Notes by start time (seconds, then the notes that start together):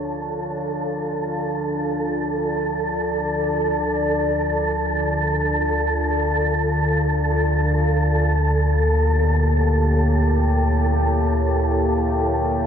Already playing: D2 D3 D4 F4 A4 C#5
1.48 D5
7.66 A#3
8.31 G4
8.57 E4
8.64 C#5